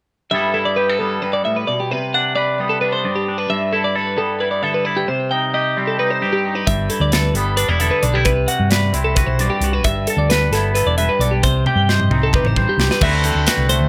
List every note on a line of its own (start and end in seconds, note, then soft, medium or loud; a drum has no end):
0.31 1.21 G2 medium
0.31 0.99 G3 medium
0.31 1.00 B3 medium
0.31 0.54 E4 medium
0.31 0.77 A4 medium
0.31 0.54 E5 medium
0.54 2.14 E4 medium
0.54 0.65 A4 medium
0.65 0.77 D5 medium
0.76 0.89 G4 medium
0.76 0.99 B4 medium
0.89 1.91 A4 soft
0.99 2.59 G3 medium
0.99 1.94 B3 medium
0.99 1.22 A4 medium
1.22 1.45 G2 medium
1.22 1.33 B4 medium
1.33 1.45 D5 medium
1.45 1.68 A2 medium
1.45 1.56 E5 medium
1.56 1.68 B4 medium
1.67 1.91 B2 medium
1.67 1.79 D5 medium
1.80 1.91 G4 medium
1.91 3.04 C3 medium
1.91 2.14 B4 medium
2.14 2.81 D4 medium
2.14 2.35 F#5 medium
2.36 3.04 B4 medium
2.36 2.58 D5 medium
2.59 3.98 G3 medium
2.59 3.48 B3 medium
2.69 2.81 A4 medium
2.81 3.27 D4 soft
2.81 2.92 B4 medium
2.93 3.15 C5 medium
3.04 3.48 G2 medium
3.04 3.47 D5 medium
3.16 3.38 G4 medium
3.29 3.73 D4 medium
3.38 3.49 B4 medium
3.50 5.08 G2 medium
3.50 3.72 E5 medium
3.73 4.39 E4 medium
3.73 3.84 A4 medium
3.84 3.96 D5 medium
3.95 4.62 A4 medium
3.95 4.18 B4 medium
4.17 5.76 G3 medium
4.17 5.06 B3 soft
4.17 4.40 A4 medium
4.40 4.85 E4 medium
4.40 4.51 B4 medium
4.51 4.63 D5 medium
4.62 5.05 D3 medium
4.62 5.06 A4 medium
4.62 4.74 E5 medium
4.74 4.85 B4 medium
4.85 5.06 E4 medium
4.85 4.97 D5 medium
4.97 5.08 G4 medium
5.08 6.22 C3 medium
5.08 5.31 C5 medium
5.31 5.98 D#4 medium
5.31 5.54 G5 medium
5.54 6.22 G4 medium
5.54 5.77 D#5 medium
5.77 7.16 G3 medium
5.77 6.65 C4 soft
5.87 5.99 A4 medium
5.99 6.44 D#4 soft
5.99 6.11 B4 medium
6.11 6.32 C5 medium
6.21 6.66 G2 medium
6.21 7.13 G4 medium
6.33 6.55 G4 medium
6.45 6.65 D#4 medium
6.55 6.67 B4 medium
6.67 6.88 G1 medium
6.67 8.26 G2 medium
6.67 6.90 E5 medium
6.67 kick loud
6.67 closed hi-hat medium
6.90 7.57 E4 medium
6.90 7.01 A4 medium
6.90 closed hi-hat medium
7.00 7.31 D2 medium
7.00 7.12 D5 medium
7.12 7.80 A4 medium
7.12 7.35 B4 medium
7.12 snare loud
7.12 closed hi-hat medium
7.34 7.65 G1 medium
7.34 8.51 G3 medium
7.34 8.29 B3 medium
7.34 7.57 A4 medium
7.34 closed hi-hat soft
7.57 7.69 D4 medium
7.57 7.69 B4 medium
7.57 closed hi-hat medium
7.69 7.89 E1 medium
7.69 8.03 E4 soft
7.69 7.80 D5 medium
7.80 8.23 D3 medium
7.80 8.23 A4 medium
7.80 7.92 E5 medium
7.80 closed hi-hat medium
7.91 8.03 B4 medium
8.02 8.25 B1 medium
8.02 8.15 D4 medium
8.02 8.14 D5 medium
8.02 closed hi-hat medium
8.14 8.26 E4 soft
8.14 8.25 G4 medium
8.25 8.46 C2 medium
8.25 9.39 C3 medium
8.25 8.48 B4 medium
8.25 kick loud
8.25 closed hi-hat medium
8.48 9.16 F#4 medium
8.48 8.70 F#5 medium
8.48 closed hi-hat medium
8.60 8.91 G2 medium
8.70 9.39 B4 medium
8.70 8.93 D5 medium
8.70 snare loud
8.70 closed hi-hat medium
8.93 9.24 C2 medium
8.93 9.81 C4 medium
8.93 9.82 E4 medium
8.93 closed hi-hat medium
9.04 9.15 A4 medium
9.15 9.62 F#4 medium
9.15 9.27 B4 medium
9.15 kick medium
9.15 closed hi-hat medium
9.27 9.48 B1 medium
9.27 9.49 C5 medium
9.39 9.84 G2 medium
9.39 9.83 D5 medium
9.39 closed hi-hat medium
9.50 9.73 G4 medium
9.60 9.85 C2 medium
9.60 9.83 F#4 medium
9.60 closed hi-hat medium
9.73 9.85 B4 medium
9.84 10.05 G1 medium
9.84 10.96 G2 medium
9.84 10.07 E5 medium
9.84 kick loud
9.84 closed hi-hat medium
10.07 10.19 A4 medium
10.07 10.75 A4 medium
10.07 closed hi-hat medium
10.17 10.48 D2 medium
10.17 10.30 D5 medium
10.30 10.52 B4 medium
10.30 10.97 B4 medium
10.30 snare loud
10.30 closed hi-hat medium
10.51 10.82 G1 medium
10.51 11.41 B3 medium
10.51 11.41 E4 medium
10.51 10.74 A4 medium
10.51 snare soft
10.51 closed hi-hat medium
10.75 11.20 A4 medium
10.75 10.86 B4 medium
10.75 closed hi-hat medium
10.86 11.07 E1 medium
10.86 10.97 D5 medium
10.98 11.43 G2 medium
10.98 11.41 B4 medium
10.98 11.09 E5 medium
10.98 closed hi-hat medium
11.09 11.20 B4 medium
11.19 11.43 B1 medium
11.19 11.41 A4 medium
11.19 11.32 D5 medium
11.19 closed hi-hat medium
11.31 11.43 G4 medium
11.43 11.64 C2 medium
11.43 12.56 C3 medium
11.43 11.66 C5 medium
11.43 kick loud
11.43 closed hi-hat medium
11.66 12.33 G4 medium
11.66 11.89 G5 medium
11.66 high tom medium
11.76 12.07 G2 medium
11.89 12.56 C5 medium
11.89 12.12 D#5 medium
11.89 snare medium
12.00 mid tom soft
12.10 12.41 C2 medium
12.10 12.99 C4 medium
12.10 12.99 D#4 medium
12.10 mid tom medium
12.23 12.34 A4 medium
12.33 12.78 G4 medium
12.33 12.46 B4 medium
12.33 kick medium
12.33 mid tom medium
12.44 12.65 A1 medium
12.44 12.68 C5 medium
12.44 mid tom medium
12.56 13.02 G2 medium
12.56 12.99 C5 medium
12.56 kick medium
12.69 12.91 G4 medium
12.77 12.88 C2 medium
12.77 12.99 G4 medium
12.77 snare medium
12.91 13.02 B4 medium
12.91 snare medium
13.01 13.32 D2 loud
13.01 13.89 D3 medium
13.01 13.69 A3 medium
13.01 13.24 C4 medium
13.01 13.46 F#4 medium
13.01 13.89 B4 medium
13.01 13.14 E5 medium
13.01 kick loud
13.01 crash loud
13.14 13.26 C5 medium
13.24 13.89 C4 medium
13.24 13.47 A4 medium
13.24 closed hi-hat medium
13.35 13.45 D2 medium
13.47 13.89 F#4 medium
13.47 13.69 B4 medium
13.47 snare loud
13.47 closed hi-hat medium
13.57 13.78 C2 medium
13.69 13.89 A3 medium
13.69 13.89 C5 medium
13.69 closed hi-hat medium
13.80 13.89 D2 medium